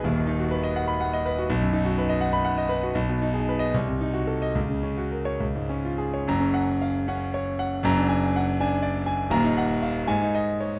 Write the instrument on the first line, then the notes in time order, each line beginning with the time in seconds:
grand piano
0.04 D#1 D#2
0.16 D#3
0.27 D#4
0.39 F#4
0.51 B4
0.63 D#5
0.76 F#5
0.88 B5
1.01 F#5
1.13 D#5
1.26 B4
1.38 F#4
1.50 B1
1.61 F#2
1.73 D#4
1.85 F#4
1.98 B4
2.09 D#5
2.21 F#5
2.33 B5
2.45 F#5
2.58 D#5
2.69 B4
2.83 F#4
2.95 B1
3.09 B2
3.22 D#4
3.34 G#4
3.49 B4
3.59 D#5
3.74 C2
3.88 C3
4.01 D#4
4.14 F#4
4.27 A4
4.42 D#5
4.55 C#2
4.68 C#3
4.83 C#4
4.98 F#4
5.12 A#4
5.25 C#5
5.40 C#2
5.55 G#2
5.69 C#4
5.85 F4
5.98 G#4
6.14 C#5
6.27 F#1 F#2 A#5
6.40 C#4
6.54 F#5
6.82 F5
7.08 C#4 F#5
7.34 C#5
7.59 F#5
7.83 F#1 F#2 A#5
7.97 D4
8.09 G#5
8.36 F#5
8.60 D4 G#5
8.82 D5
9.06 G#5
9.30 D#1 D#2 A#5
9.44 D#4
9.57 F#5
9.83 F5
10.07 G#2 G#5
10.22 D#4
10.35 D#5
10.60 C#5